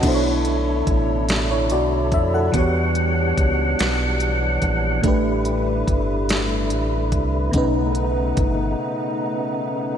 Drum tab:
CC |x-----|------|------|------|
HH |xxxxxx|xxxxxx|xxxxxx|xxx---|
SD |---o--|---o--|---o--|------|
BD |o-o--o|o-o--o|o-o--o|o-o---|